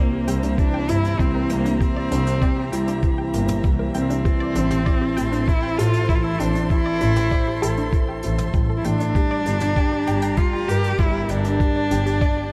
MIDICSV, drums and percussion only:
0, 0, Header, 1, 2, 480
1, 0, Start_track
1, 0, Tempo, 612245
1, 1417, Time_signature, 4, 2, 24, 8
1, 9816, End_track
2, 0, Start_track
2, 0, Title_t, "Drums"
2, 217, Note_on_c, 9, 42, 89
2, 295, Note_off_c, 9, 42, 0
2, 336, Note_on_c, 9, 42, 56
2, 414, Note_off_c, 9, 42, 0
2, 456, Note_on_c, 9, 36, 96
2, 456, Note_on_c, 9, 42, 49
2, 534, Note_off_c, 9, 42, 0
2, 535, Note_off_c, 9, 36, 0
2, 694, Note_on_c, 9, 42, 78
2, 772, Note_off_c, 9, 42, 0
2, 820, Note_on_c, 9, 42, 60
2, 898, Note_off_c, 9, 42, 0
2, 936, Note_on_c, 9, 36, 107
2, 938, Note_on_c, 9, 42, 45
2, 1014, Note_off_c, 9, 36, 0
2, 1017, Note_off_c, 9, 42, 0
2, 1172, Note_on_c, 9, 42, 78
2, 1250, Note_off_c, 9, 42, 0
2, 1298, Note_on_c, 9, 42, 59
2, 1376, Note_off_c, 9, 42, 0
2, 1416, Note_on_c, 9, 36, 100
2, 1420, Note_on_c, 9, 42, 50
2, 1494, Note_off_c, 9, 36, 0
2, 1498, Note_off_c, 9, 42, 0
2, 1659, Note_on_c, 9, 42, 81
2, 1737, Note_off_c, 9, 42, 0
2, 1776, Note_on_c, 9, 42, 64
2, 1855, Note_off_c, 9, 42, 0
2, 1895, Note_on_c, 9, 36, 106
2, 1895, Note_on_c, 9, 42, 47
2, 1973, Note_off_c, 9, 36, 0
2, 1973, Note_off_c, 9, 42, 0
2, 2138, Note_on_c, 9, 42, 88
2, 2216, Note_off_c, 9, 42, 0
2, 2254, Note_on_c, 9, 42, 65
2, 2333, Note_off_c, 9, 42, 0
2, 2371, Note_on_c, 9, 42, 47
2, 2375, Note_on_c, 9, 36, 97
2, 2450, Note_off_c, 9, 42, 0
2, 2453, Note_off_c, 9, 36, 0
2, 2614, Note_on_c, 9, 42, 79
2, 2693, Note_off_c, 9, 42, 0
2, 2729, Note_on_c, 9, 42, 69
2, 2733, Note_on_c, 9, 45, 70
2, 2807, Note_off_c, 9, 42, 0
2, 2811, Note_off_c, 9, 45, 0
2, 2849, Note_on_c, 9, 42, 52
2, 2854, Note_on_c, 9, 36, 113
2, 2927, Note_off_c, 9, 42, 0
2, 2933, Note_off_c, 9, 36, 0
2, 3090, Note_on_c, 9, 42, 82
2, 3168, Note_off_c, 9, 42, 0
2, 3215, Note_on_c, 9, 42, 65
2, 3294, Note_off_c, 9, 42, 0
2, 3335, Note_on_c, 9, 36, 109
2, 3335, Note_on_c, 9, 42, 52
2, 3413, Note_off_c, 9, 36, 0
2, 3414, Note_off_c, 9, 42, 0
2, 3568, Note_on_c, 9, 42, 81
2, 3647, Note_off_c, 9, 42, 0
2, 3690, Note_on_c, 9, 45, 61
2, 3693, Note_on_c, 9, 42, 67
2, 3768, Note_off_c, 9, 45, 0
2, 3772, Note_off_c, 9, 42, 0
2, 3814, Note_on_c, 9, 36, 104
2, 3816, Note_on_c, 9, 42, 47
2, 3892, Note_off_c, 9, 36, 0
2, 3894, Note_off_c, 9, 42, 0
2, 4055, Note_on_c, 9, 42, 85
2, 4134, Note_off_c, 9, 42, 0
2, 4174, Note_on_c, 9, 42, 59
2, 4252, Note_off_c, 9, 42, 0
2, 4294, Note_on_c, 9, 36, 100
2, 4297, Note_on_c, 9, 42, 52
2, 4372, Note_off_c, 9, 36, 0
2, 4376, Note_off_c, 9, 42, 0
2, 4539, Note_on_c, 9, 42, 91
2, 4617, Note_off_c, 9, 42, 0
2, 4651, Note_on_c, 9, 42, 57
2, 4730, Note_off_c, 9, 42, 0
2, 4774, Note_on_c, 9, 36, 115
2, 4776, Note_on_c, 9, 42, 54
2, 4853, Note_off_c, 9, 36, 0
2, 4855, Note_off_c, 9, 42, 0
2, 5016, Note_on_c, 9, 42, 77
2, 5094, Note_off_c, 9, 42, 0
2, 5136, Note_on_c, 9, 42, 60
2, 5214, Note_off_c, 9, 42, 0
2, 5254, Note_on_c, 9, 36, 100
2, 5254, Note_on_c, 9, 42, 46
2, 5333, Note_off_c, 9, 36, 0
2, 5333, Note_off_c, 9, 42, 0
2, 5492, Note_on_c, 9, 42, 80
2, 5571, Note_off_c, 9, 42, 0
2, 5612, Note_on_c, 9, 42, 59
2, 5615, Note_on_c, 9, 45, 55
2, 5691, Note_off_c, 9, 42, 0
2, 5694, Note_off_c, 9, 45, 0
2, 5733, Note_on_c, 9, 42, 50
2, 5734, Note_on_c, 9, 36, 97
2, 5811, Note_off_c, 9, 42, 0
2, 5812, Note_off_c, 9, 36, 0
2, 5980, Note_on_c, 9, 42, 91
2, 6058, Note_off_c, 9, 42, 0
2, 6094, Note_on_c, 9, 42, 55
2, 6172, Note_off_c, 9, 42, 0
2, 6214, Note_on_c, 9, 36, 106
2, 6217, Note_on_c, 9, 42, 52
2, 6293, Note_off_c, 9, 36, 0
2, 6296, Note_off_c, 9, 42, 0
2, 6449, Note_on_c, 9, 42, 78
2, 6528, Note_off_c, 9, 42, 0
2, 6573, Note_on_c, 9, 45, 75
2, 6577, Note_on_c, 9, 42, 53
2, 6651, Note_off_c, 9, 45, 0
2, 6655, Note_off_c, 9, 42, 0
2, 6691, Note_on_c, 9, 42, 51
2, 6694, Note_on_c, 9, 36, 113
2, 6769, Note_off_c, 9, 42, 0
2, 6772, Note_off_c, 9, 36, 0
2, 6934, Note_on_c, 9, 42, 84
2, 7012, Note_off_c, 9, 42, 0
2, 7056, Note_on_c, 9, 42, 58
2, 7135, Note_off_c, 9, 42, 0
2, 7174, Note_on_c, 9, 36, 105
2, 7176, Note_on_c, 9, 42, 46
2, 7253, Note_off_c, 9, 36, 0
2, 7254, Note_off_c, 9, 42, 0
2, 7415, Note_on_c, 9, 42, 76
2, 7493, Note_off_c, 9, 42, 0
2, 7526, Note_on_c, 9, 42, 59
2, 7535, Note_on_c, 9, 45, 59
2, 7604, Note_off_c, 9, 42, 0
2, 7614, Note_off_c, 9, 45, 0
2, 7653, Note_on_c, 9, 42, 49
2, 7654, Note_on_c, 9, 36, 99
2, 7731, Note_off_c, 9, 42, 0
2, 7733, Note_off_c, 9, 36, 0
2, 7896, Note_on_c, 9, 42, 74
2, 7975, Note_off_c, 9, 42, 0
2, 8011, Note_on_c, 9, 42, 63
2, 8089, Note_off_c, 9, 42, 0
2, 8129, Note_on_c, 9, 42, 52
2, 8135, Note_on_c, 9, 36, 102
2, 8208, Note_off_c, 9, 42, 0
2, 8213, Note_off_c, 9, 36, 0
2, 8380, Note_on_c, 9, 42, 80
2, 8458, Note_off_c, 9, 42, 0
2, 8498, Note_on_c, 9, 42, 60
2, 8576, Note_off_c, 9, 42, 0
2, 8609, Note_on_c, 9, 42, 48
2, 8615, Note_on_c, 9, 36, 101
2, 8687, Note_off_c, 9, 42, 0
2, 8693, Note_off_c, 9, 36, 0
2, 8849, Note_on_c, 9, 42, 76
2, 8928, Note_off_c, 9, 42, 0
2, 8972, Note_on_c, 9, 42, 56
2, 9051, Note_off_c, 9, 42, 0
2, 9095, Note_on_c, 9, 36, 100
2, 9097, Note_on_c, 9, 42, 54
2, 9174, Note_off_c, 9, 36, 0
2, 9176, Note_off_c, 9, 42, 0
2, 9337, Note_on_c, 9, 42, 78
2, 9416, Note_off_c, 9, 42, 0
2, 9456, Note_on_c, 9, 42, 53
2, 9535, Note_off_c, 9, 42, 0
2, 9575, Note_on_c, 9, 36, 99
2, 9575, Note_on_c, 9, 42, 47
2, 9653, Note_off_c, 9, 36, 0
2, 9653, Note_off_c, 9, 42, 0
2, 9816, End_track
0, 0, End_of_file